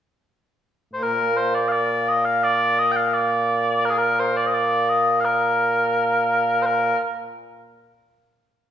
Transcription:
0.93 A#2 A#3 C5
1.03 A#4
1.36 C5
1.54 D5
1.68 D5 F5
2.08 D#5
2.25 F5
2.44 D5
2.79 D#5
2.92 G5
2.96 F5
3.13 D5
3.85 A#4
3.90 G#4
3.98 A#4
4.19 C5
4.37 D5
4.46 D#5
4.54 D5
4.89 D#5
5.20 F5
5.25 A#4
6.62 A#4 C5

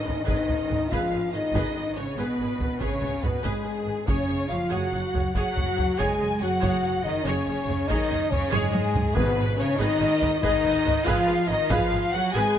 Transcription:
Already playing: D#3 D#4 D#5
0.03 G#1 G#4 B4
0.08 taiko low
0.24 G#1 D#3 D#4 G#4 B4 D#5, taiko
0.48 G#1 G#4 B4, taiko low
0.69 G#1 G#4 B4, taiko low
0.89 G#1 F3 F4 G#4 B4 F5, taiko
1.11 G#1 G#4 B4
1.33 G#1 D#3 D#4 G#4 B4 D#5
1.54 G#1 G#4 B4, taiko
1.75 G#1 G#4 B4
1.96 G#1 C#3 C#4 G#4 B4 C#5
2.16 G#1 B2 B3 G#4 B4
2.39 G#1 G#4 B4
2.59 G#1 G#4 B4, taiko low
2.80 G#1 C#3 C#4 G#4 B4 C#5, taiko
3.02 G#1 G#4 B4, taiko low
3.23 G#1 B2 B3 G#4 B4, taiko low
3.43 G#1 G#2 G#3 G#4 B4, taiko
3.64 G#1 G#4 B4
3.86 G#1 G#4 B4
4.07 F#1 C#3 C#4 G#4 C#5, taiko
4.29 F#1 G#4 C#5
4.49 F#1 F3 F4 G#4 C#5 F5
4.70 F#1 F#3 F#4 G#4 C#5 F#5
4.92 F#1 G#4 C#5
5.14 F#1 G#4 C#5, taiko low
5.33 F#1 F#3 F#4 G#4 C#5 F#5, taiko
5.56 F#1 G#4 C#5, taiko low
5.76 F#1 G#4 C#5, taiko low
5.98 F#1 G#3 G#4 C#5 G#5, taiko
6.20 F#1 G#4 C#5
6.40 F#1 F#3 F#4 G#4 C#5 F#5
6.61 F#1 G#4 C#5, taiko
6.83 F#1 G#4 C#5
7.03 F#1 D#3 D#4 G#4 C#5 D#5
7.23 F#1 C#4 G#4 C#5
7.27 C#3 C#5
7.47 F#1 G#4 C#5
7.68 F#1 G#4 C#5, taiko low
7.87 F#1 D#3 D#4 G#4 C#5 D#5, taiko
8.10 F#1 G#4 C#5, taiko low
8.30 F#1 C#3 C#4 G#4 C#5, taiko low
8.50 F#1 G#2 G#3 G#4 C#5, taiko high
8.72 F#1 G#4 C#5, taiko high
8.94 F#1 G#4 C#5, taiko low
9.13 G#1 G#2 B3 G#4 B4, taiko
9.18 B2 B4
9.36 G#1 G#4 B4
9.56 G#1 C#3 C#4 G#4 B4 C#5
9.60 C#5
9.76 D#4 G#4 B4 D#5
9.80 G#1 D#3 D#5
10.00 G#1 G#4 B4
10.20 G#1 G#4 B4, taiko low
10.40 G#1 D#3 D#4 G#4 B4 D#5, taiko
10.45 D#5
10.64 G#1 G#4 B4, taiko low
10.84 G#1 G#4 B4, taiko low
11.04 G#1 F3 F4 G#4 B4 F5 G#5, taiko
11.11 F5
11.27 G#1 G#4 B4
11.48 G#1 D#3 D#4 G#4 B4 D#5
11.69 G#1 F3 F4 G#4 B4 F5, taiko
11.91 G#1 G#4 B4
12.11 G#1 F#3 F#4 G#4 B4 F#5
12.33 G#1 G#3 G#4 B4 G#5

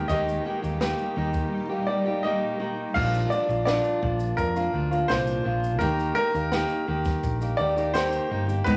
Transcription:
Already playing: A#2 D#3 G3 D#4 G4
0.08 D#2 D#3 A#3 D#4 G4 D#5, kick, shaker
0.29 shaker
0.45 D#3 A#3 D#4 G4
0.62 D#2 A#3 D#4 G4, shaker
0.80 D#3 A#3 D#4 G4, snare, shaker
0.98 shaker
1.16 D#2 D#3 A#3 D#4 G4
1.34 kick, shaker
1.69 A#3 D#4 G4
1.87 D#3 A#3 D#4 G4 D5
2.05 A#3 D#4 G4
2.23 D#3 A#3 D#4 G4 D#5
2.59 D#3 A#3 D#4 G4
2.94 A#1 A#2 F3 A#3 D4 F4 F5, kick, crash
3.14 shaker
3.30 F3 A#3 D4 F4 D5, shaker
3.49 A#1 A#3 D4 F4, shaker
3.65 A#2 F3 A#3 D4 F4 D5, snare, shaker
3.84 shaker
4.02 A#1 F3 A#3 D4 F4, kick
4.20 shaker
4.37 F2 A#4, kick, shaker
4.56 A#3 D4 F4, shaker
4.73 D2 F3 A#3 D4 F4
4.91 A#3 D4 F4, shaker
5.08 C2 A#2 F3 A#3 D4 F4 C5, snare, shaker
5.27 shaker
5.44 A#1 F3 A#3 D4 F4
5.64 shaker
5.79 D#2 D#3 A#3 D#4 G4 A#4, kick, shaker
6.00 shaker
6.15 D#3 A#3 D#4 G4 A#4
6.33 D#2 A#3 D#4 G4, shaker
6.51 D#3 A#3 D#4 G4, snare, shaker
6.69 shaker
6.87 D#2 D#3 A#3 D#4 G4
7.05 kick, snare, shaker
7.23 A#1, kick, shaker
7.41 A#3 D#4 G4, shaker
7.57 D#2 D#3 A#3 D#4 G4 D5
7.76 A#3 D#4 G4, shaker
7.94 D#3 A#3 D#4 G4 C5, snare, shaker
8.12 shaker
8.30 G1 D#3 A#3 D#4 G4
8.48 A#3 D#4 G4, shaker
8.64 G#1 G#2 D#3 G#3 B3 D#4 B4, kick, shaker

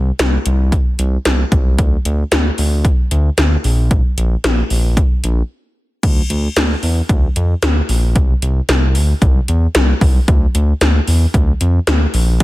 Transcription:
Already playing: C2
0.19 C2, snare, closed hi-hat
0.46 C2, closed hi-hat
0.72 kick, closed hi-hat
0.99 C2, closed hi-hat
1.25 C2, snare, closed hi-hat
1.52 C2, kick, closed hi-hat
1.78 D2, kick, closed hi-hat
2.05 D2, closed hi-hat
2.32 D2, snare, closed hi-hat
2.58 D2, open hi-hat
2.85 kick, closed hi-hat
3.11 D2, closed hi-hat
3.38 D2, snare, closed hi-hat
3.64 A#1, open hi-hat
3.91 kick, closed hi-hat
4.17 A#1, closed hi-hat
4.44 A#1, snare, closed hi-hat
4.70 A#1, open hi-hat
4.97 kick, closed hi-hat
5.24 A#1, closed hi-hat
6.03 D2, kick, closed hi-hat, crash
6.30 D2, closed hi-hat
6.56 D2, snare, closed hi-hat
6.83 E2, open hi-hat
7.09 D2, kick, closed hi-hat
7.36 F2, closed hi-hat
7.62 D2, snare, closed hi-hat
7.89 A#1, open hi-hat
8.16 C2, kick, closed hi-hat
8.42 C2, closed hi-hat
8.69 C2, snare, closed hi-hat
8.95 D2, open hi-hat
9.22 C2, kick, closed hi-hat
9.48 E2, closed hi-hat
9.75 C2, snare, closed hi-hat
10.01 C2, kick, open hi-hat
10.28 D2, kick, closed hi-hat
10.55 D2, closed hi-hat
10.81 D2, snare, closed hi-hat
11.07 E2, open hi-hat
11.34 D2, kick, closed hi-hat
11.61 F2, closed hi-hat
11.87 D2, snare, closed hi-hat
12.14 A#1, open hi-hat
12.40 kick, closed hi-hat

